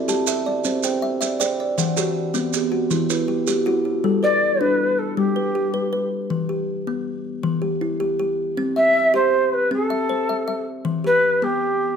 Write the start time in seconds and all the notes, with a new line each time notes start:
Already playing: D5 E5
0.08 G4 A5, maracas
0.27 G4 E5, maracas
0.46 D5
0.64 C4 C5, maracas
0.83 C5 G5, maracas
1.02 E5
1.21 D5 E5, maracas
1.40 C5 D5 G5, maracas
1.60 D5
1.78 E3 F#5, maracas
1.97 E3 F#4 G4, maracas
2.34 B3 C4, maracas
2.53 B3 G4, maracas
2.72 F#4
2.91 E3 E4, maracas
3.10 E4 B4, maracas
3.28 G4
3.47 F#4 G4, maracas
3.66 E4 F#4
3.85 F#4
4.04 G3 A4
4.23 B4 D5
4.61 D4 B4
4.98 A4
5.17 G3 G4
5.36 B4
5.55 G4
5.74 B4
5.93 B4
6.30 E3
6.49 G4
6.87 B3
7.43 E3
7.62 G4
7.81 E4
8.00 G4
8.20 G4
8.57 C4
8.76 E5
9.14 G4 C5
9.53 B4
9.71 C4 A4
9.90 E5
10.09 C5
10.29 E5
10.48 E5
10.85 E3
11.04 G4 B4
11.42 B3 G4